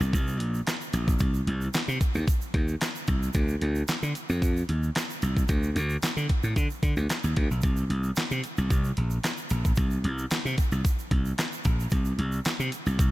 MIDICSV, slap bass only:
0, 0, Header, 1, 3, 480
1, 0, Start_track
1, 0, Key_signature, -3, "minor"
1, 0, Tempo, 535714
1, 1079, Time_signature, 4, 2, 24, 8
1, 11748, End_track
2, 0, Start_track
2, 0, Title_t, "Slap bass"
2, 0, Program_c, 0, 36
2, 3, Note_on_c, 0, 36, 82
2, 90, Note_off_c, 0, 36, 0
2, 119, Note_on_c, 0, 36, 89
2, 356, Note_off_c, 0, 36, 0
2, 356, Note_on_c, 0, 34, 90
2, 538, Note_off_c, 0, 34, 0
2, 837, Note_on_c, 0, 34, 97
2, 1019, Note_off_c, 0, 34, 0
2, 1078, Note_on_c, 0, 36, 97
2, 1260, Note_off_c, 0, 36, 0
2, 1317, Note_on_c, 0, 36, 79
2, 1499, Note_off_c, 0, 36, 0
2, 1685, Note_on_c, 0, 48, 82
2, 1771, Note_off_c, 0, 48, 0
2, 1926, Note_on_c, 0, 39, 91
2, 2012, Note_off_c, 0, 39, 0
2, 2276, Note_on_c, 0, 39, 73
2, 2458, Note_off_c, 0, 39, 0
2, 2761, Note_on_c, 0, 36, 91
2, 2942, Note_off_c, 0, 36, 0
2, 2999, Note_on_c, 0, 38, 98
2, 3180, Note_off_c, 0, 38, 0
2, 3240, Note_on_c, 0, 38, 88
2, 3421, Note_off_c, 0, 38, 0
2, 3608, Note_on_c, 0, 50, 78
2, 3693, Note_off_c, 0, 50, 0
2, 3847, Note_on_c, 0, 41, 90
2, 3932, Note_off_c, 0, 41, 0
2, 3960, Note_on_c, 0, 41, 89
2, 4141, Note_off_c, 0, 41, 0
2, 4200, Note_on_c, 0, 39, 84
2, 4381, Note_off_c, 0, 39, 0
2, 4682, Note_on_c, 0, 36, 85
2, 4862, Note_off_c, 0, 36, 0
2, 4920, Note_on_c, 0, 38, 90
2, 5101, Note_off_c, 0, 38, 0
2, 5159, Note_on_c, 0, 38, 81
2, 5341, Note_off_c, 0, 38, 0
2, 5526, Note_on_c, 0, 50, 75
2, 5611, Note_off_c, 0, 50, 0
2, 5766, Note_on_c, 0, 45, 87
2, 5851, Note_off_c, 0, 45, 0
2, 5879, Note_on_c, 0, 50, 112
2, 5975, Note_off_c, 0, 50, 0
2, 6118, Note_on_c, 0, 50, 80
2, 6214, Note_off_c, 0, 50, 0
2, 6243, Note_on_c, 0, 38, 89
2, 6330, Note_off_c, 0, 38, 0
2, 6486, Note_on_c, 0, 39, 91
2, 6571, Note_off_c, 0, 39, 0
2, 6602, Note_on_c, 0, 38, 99
2, 6697, Note_off_c, 0, 38, 0
2, 6725, Note_on_c, 0, 35, 76
2, 6811, Note_off_c, 0, 35, 0
2, 6839, Note_on_c, 0, 36, 109
2, 7021, Note_off_c, 0, 36, 0
2, 7077, Note_on_c, 0, 36, 93
2, 7259, Note_off_c, 0, 36, 0
2, 7446, Note_on_c, 0, 48, 83
2, 7532, Note_off_c, 0, 48, 0
2, 7687, Note_on_c, 0, 36, 88
2, 7772, Note_off_c, 0, 36, 0
2, 7800, Note_on_c, 0, 36, 86
2, 7981, Note_off_c, 0, 36, 0
2, 8040, Note_on_c, 0, 34, 75
2, 8221, Note_off_c, 0, 34, 0
2, 8518, Note_on_c, 0, 34, 96
2, 8700, Note_off_c, 0, 34, 0
2, 8757, Note_on_c, 0, 36, 98
2, 8939, Note_off_c, 0, 36, 0
2, 8998, Note_on_c, 0, 36, 83
2, 9180, Note_off_c, 0, 36, 0
2, 9366, Note_on_c, 0, 48, 80
2, 9451, Note_off_c, 0, 48, 0
2, 9604, Note_on_c, 0, 36, 89
2, 9690, Note_off_c, 0, 36, 0
2, 9956, Note_on_c, 0, 36, 82
2, 10139, Note_off_c, 0, 36, 0
2, 10441, Note_on_c, 0, 34, 96
2, 10622, Note_off_c, 0, 34, 0
2, 10678, Note_on_c, 0, 36, 103
2, 10860, Note_off_c, 0, 36, 0
2, 10918, Note_on_c, 0, 36, 90
2, 11100, Note_off_c, 0, 36, 0
2, 11286, Note_on_c, 0, 48, 88
2, 11371, Note_off_c, 0, 48, 0
2, 11526, Note_on_c, 0, 36, 100
2, 11611, Note_off_c, 0, 36, 0
2, 11639, Note_on_c, 0, 36, 81
2, 11748, Note_off_c, 0, 36, 0
2, 11748, End_track
3, 0, Start_track
3, 0, Title_t, "Muted slap bass strokes"
3, 3482, Note_on_c, 9, 29, 45
3, 3571, Note_off_c, 9, 29, 0
3, 5400, Note_on_c, 9, 29, 48
3, 5489, Note_off_c, 9, 29, 0
3, 7320, Note_on_c, 9, 29, 44
3, 7410, Note_off_c, 9, 29, 0
3, 9241, Note_on_c, 9, 29, 46
3, 9331, Note_off_c, 9, 29, 0
3, 11159, Note_on_c, 9, 29, 47
3, 11249, Note_off_c, 9, 29, 0
3, 11748, End_track
0, 0, End_of_file